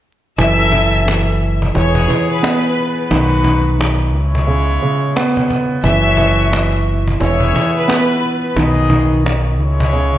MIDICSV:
0, 0, Header, 1, 6, 480
1, 0, Start_track
1, 0, Tempo, 681818
1, 270, Time_signature, 4, 2, 24, 8
1, 7167, End_track
2, 0, Start_track
2, 0, Title_t, "Violin section"
2, 0, Program_c, 0, 48
2, 267, Note_on_c, 0, 76, 108
2, 869, Note_off_c, 0, 76, 0
2, 1234, Note_on_c, 0, 73, 87
2, 1597, Note_off_c, 0, 73, 0
2, 1621, Note_on_c, 0, 71, 70
2, 2163, Note_off_c, 0, 71, 0
2, 4104, Note_on_c, 0, 76, 100
2, 4707, Note_off_c, 0, 76, 0
2, 5073, Note_on_c, 0, 73, 84
2, 5437, Note_off_c, 0, 73, 0
2, 5464, Note_on_c, 0, 71, 83
2, 6004, Note_off_c, 0, 71, 0
2, 7167, End_track
3, 0, Start_track
3, 0, Title_t, "Trumpet section"
3, 0, Program_c, 1, 61
3, 265, Note_on_c, 1, 64, 81
3, 266, Note_on_c, 1, 54, 85
3, 266, Note_on_c, 1, 69, 92
3, 973, Note_off_c, 1, 54, 0
3, 973, Note_off_c, 1, 64, 0
3, 973, Note_off_c, 1, 69, 0
3, 1226, Note_on_c, 1, 59, 86
3, 1226, Note_on_c, 1, 68, 94
3, 1933, Note_off_c, 1, 68, 0
3, 1934, Note_off_c, 1, 59, 0
3, 2188, Note_on_c, 1, 56, 76
3, 2188, Note_on_c, 1, 66, 82
3, 2188, Note_on_c, 1, 71, 97
3, 2659, Note_off_c, 1, 56, 0
3, 2659, Note_off_c, 1, 66, 0
3, 2659, Note_off_c, 1, 71, 0
3, 2914, Note_on_c, 1, 56, 87
3, 2914, Note_on_c, 1, 64, 85
3, 2914, Note_on_c, 1, 73, 91
3, 3853, Note_off_c, 1, 56, 0
3, 3853, Note_off_c, 1, 64, 0
3, 3853, Note_off_c, 1, 73, 0
3, 4118, Note_on_c, 1, 57, 86
3, 4118, Note_on_c, 1, 66, 87
3, 4118, Note_on_c, 1, 73, 99
3, 4820, Note_off_c, 1, 57, 0
3, 4820, Note_off_c, 1, 66, 0
3, 4820, Note_off_c, 1, 73, 0
3, 5066, Note_on_c, 1, 59, 87
3, 5066, Note_on_c, 1, 68, 86
3, 5066, Note_on_c, 1, 76, 96
3, 5774, Note_off_c, 1, 59, 0
3, 5774, Note_off_c, 1, 68, 0
3, 5774, Note_off_c, 1, 76, 0
3, 6029, Note_on_c, 1, 59, 80
3, 6029, Note_on_c, 1, 68, 79
3, 6029, Note_on_c, 1, 75, 86
3, 6500, Note_off_c, 1, 59, 0
3, 6500, Note_off_c, 1, 68, 0
3, 6500, Note_off_c, 1, 75, 0
3, 6742, Note_on_c, 1, 73, 98
3, 6743, Note_on_c, 1, 56, 88
3, 6743, Note_on_c, 1, 64, 86
3, 7167, Note_off_c, 1, 56, 0
3, 7167, Note_off_c, 1, 64, 0
3, 7167, Note_off_c, 1, 73, 0
3, 7167, End_track
4, 0, Start_track
4, 0, Title_t, "Upright piano"
4, 0, Program_c, 2, 0
4, 270, Note_on_c, 2, 52, 89
4, 398, Control_c, 2, 64, 127
4, 500, Note_off_c, 2, 52, 0
4, 511, Note_on_c, 2, 52, 73
4, 735, Note_off_c, 2, 52, 0
4, 745, Note_on_c, 2, 52, 70
4, 1219, Note_off_c, 2, 52, 0
4, 1230, Note_on_c, 2, 52, 72
4, 1239, Control_c, 2, 64, 0
4, 1359, Control_c, 2, 64, 127
4, 1453, Note_off_c, 2, 52, 0
4, 1463, Note_on_c, 2, 52, 74
4, 1708, Note_on_c, 2, 59, 94
4, 2186, Note_on_c, 2, 51, 91
4, 2187, Note_off_c, 2, 52, 0
4, 2189, Note_off_c, 2, 59, 0
4, 2200, Control_c, 2, 64, 0
4, 2333, Control_c, 2, 64, 127
4, 2411, Note_off_c, 2, 51, 0
4, 2422, Note_on_c, 2, 51, 75
4, 2657, Note_off_c, 2, 51, 0
4, 2668, Note_on_c, 2, 51, 69
4, 2909, Note_off_c, 2, 51, 0
4, 2920, Control_c, 2, 64, 0
4, 3059, Control_c, 2, 64, 127
4, 3148, Note_on_c, 2, 49, 73
4, 3385, Note_off_c, 2, 49, 0
4, 3395, Note_on_c, 2, 49, 72
4, 3633, Note_on_c, 2, 59, 106
4, 4108, Note_on_c, 2, 52, 87
4, 4112, Note_off_c, 2, 59, 0
4, 4113, Note_off_c, 2, 49, 0
4, 4120, Control_c, 2, 64, 0
4, 4230, Control_c, 2, 64, 127
4, 4339, Note_off_c, 2, 52, 0
4, 4350, Note_on_c, 2, 52, 71
4, 4574, Note_off_c, 2, 52, 0
4, 4585, Note_on_c, 2, 52, 74
4, 5058, Note_off_c, 2, 52, 0
4, 5069, Note_on_c, 2, 52, 74
4, 5080, Control_c, 2, 64, 0
4, 5213, Control_c, 2, 64, 127
4, 5293, Note_off_c, 2, 52, 0
4, 5303, Note_on_c, 2, 52, 73
4, 5547, Note_on_c, 2, 59, 99
4, 6027, Note_off_c, 2, 52, 0
4, 6028, Note_on_c, 2, 51, 89
4, 6029, Note_off_c, 2, 59, 0
4, 6038, Control_c, 2, 64, 0
4, 6175, Control_c, 2, 64, 127
4, 6251, Note_off_c, 2, 51, 0
4, 6261, Note_on_c, 2, 51, 77
4, 6497, Note_off_c, 2, 51, 0
4, 6507, Note_on_c, 2, 51, 70
4, 6749, Note_off_c, 2, 51, 0
4, 6759, Control_c, 2, 64, 0
4, 6888, Control_c, 2, 64, 127
4, 6988, Note_on_c, 2, 49, 69
4, 7167, Note_off_c, 2, 49, 0
4, 7167, End_track
5, 0, Start_track
5, 0, Title_t, "Fingered electric bass"
5, 0, Program_c, 3, 33
5, 271, Note_on_c, 3, 30, 104
5, 1202, Note_off_c, 3, 30, 0
5, 1233, Note_on_c, 3, 28, 103
5, 1449, Note_off_c, 3, 28, 0
5, 2191, Note_on_c, 3, 35, 101
5, 2912, Note_off_c, 3, 35, 0
5, 2912, Note_on_c, 3, 37, 98
5, 3363, Note_off_c, 3, 37, 0
5, 4110, Note_on_c, 3, 30, 106
5, 5042, Note_off_c, 3, 30, 0
5, 5073, Note_on_c, 3, 28, 101
5, 5289, Note_off_c, 3, 28, 0
5, 6030, Note_on_c, 3, 35, 106
5, 6751, Note_off_c, 3, 35, 0
5, 6751, Note_on_c, 3, 37, 94
5, 7167, Note_off_c, 3, 37, 0
5, 7167, End_track
6, 0, Start_track
6, 0, Title_t, "Cajon"
6, 270, Note_on_c, 9, 36, 112
6, 341, Note_off_c, 9, 36, 0
6, 504, Note_on_c, 9, 36, 94
6, 575, Note_off_c, 9, 36, 0
6, 760, Note_on_c, 9, 38, 109
6, 831, Note_off_c, 9, 38, 0
6, 989, Note_on_c, 9, 38, 43
6, 1059, Note_off_c, 9, 38, 0
6, 1141, Note_on_c, 9, 36, 88
6, 1212, Note_off_c, 9, 36, 0
6, 1230, Note_on_c, 9, 38, 48
6, 1232, Note_on_c, 9, 36, 89
6, 1300, Note_off_c, 9, 38, 0
6, 1303, Note_off_c, 9, 36, 0
6, 1373, Note_on_c, 9, 36, 89
6, 1443, Note_off_c, 9, 36, 0
6, 1480, Note_on_c, 9, 36, 99
6, 1550, Note_off_c, 9, 36, 0
6, 1717, Note_on_c, 9, 38, 115
6, 1788, Note_off_c, 9, 38, 0
6, 1948, Note_on_c, 9, 38, 30
6, 2019, Note_off_c, 9, 38, 0
6, 2092, Note_on_c, 9, 38, 32
6, 2162, Note_off_c, 9, 38, 0
6, 2190, Note_on_c, 9, 36, 113
6, 2260, Note_off_c, 9, 36, 0
6, 2424, Note_on_c, 9, 36, 93
6, 2494, Note_off_c, 9, 36, 0
6, 2680, Note_on_c, 9, 38, 110
6, 2750, Note_off_c, 9, 38, 0
6, 2908, Note_on_c, 9, 38, 39
6, 2978, Note_off_c, 9, 38, 0
6, 3061, Note_on_c, 9, 36, 87
6, 3131, Note_off_c, 9, 36, 0
6, 3150, Note_on_c, 9, 38, 50
6, 3221, Note_off_c, 9, 38, 0
6, 3399, Note_on_c, 9, 38, 47
6, 3469, Note_off_c, 9, 38, 0
6, 3637, Note_on_c, 9, 38, 106
6, 3707, Note_off_c, 9, 38, 0
6, 3780, Note_on_c, 9, 36, 98
6, 3850, Note_off_c, 9, 36, 0
6, 3875, Note_on_c, 9, 36, 89
6, 3945, Note_off_c, 9, 36, 0
6, 4010, Note_on_c, 9, 38, 30
6, 4081, Note_off_c, 9, 38, 0
6, 4109, Note_on_c, 9, 36, 107
6, 4179, Note_off_c, 9, 36, 0
6, 4343, Note_on_c, 9, 36, 91
6, 4414, Note_off_c, 9, 36, 0
6, 4598, Note_on_c, 9, 38, 107
6, 4669, Note_off_c, 9, 38, 0
6, 4828, Note_on_c, 9, 38, 42
6, 4898, Note_off_c, 9, 38, 0
6, 4981, Note_on_c, 9, 36, 88
6, 5051, Note_off_c, 9, 36, 0
6, 5070, Note_on_c, 9, 38, 49
6, 5072, Note_on_c, 9, 36, 87
6, 5140, Note_off_c, 9, 38, 0
6, 5142, Note_off_c, 9, 36, 0
6, 5212, Note_on_c, 9, 36, 90
6, 5283, Note_off_c, 9, 36, 0
6, 5319, Note_on_c, 9, 36, 99
6, 5390, Note_off_c, 9, 36, 0
6, 5558, Note_on_c, 9, 38, 109
6, 5628, Note_off_c, 9, 38, 0
6, 5789, Note_on_c, 9, 38, 30
6, 5859, Note_off_c, 9, 38, 0
6, 5932, Note_on_c, 9, 38, 32
6, 6003, Note_off_c, 9, 38, 0
6, 6030, Note_on_c, 9, 36, 110
6, 6100, Note_off_c, 9, 36, 0
6, 6264, Note_on_c, 9, 36, 94
6, 6334, Note_off_c, 9, 36, 0
6, 6520, Note_on_c, 9, 38, 112
6, 6591, Note_off_c, 9, 38, 0
6, 6749, Note_on_c, 9, 38, 41
6, 6819, Note_off_c, 9, 38, 0
6, 6901, Note_on_c, 9, 36, 90
6, 6971, Note_off_c, 9, 36, 0
6, 6991, Note_on_c, 9, 38, 50
6, 7062, Note_off_c, 9, 38, 0
6, 7167, End_track
0, 0, End_of_file